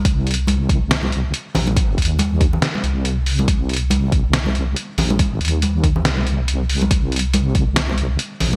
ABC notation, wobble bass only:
X:1
M:4/4
L:1/8
Q:"Swing 16ths" 1/4=140
K:Bbmix
V:1 name="Wobble bass" clef=bass
C,,3 C,,3 z B,,,- | B,,, E,,3 z C,,3 | C,,3 C,,3 z B,,,- | B,,, E,,3 C,,3 C,, |
C,,3 C,,3 z B,,, |]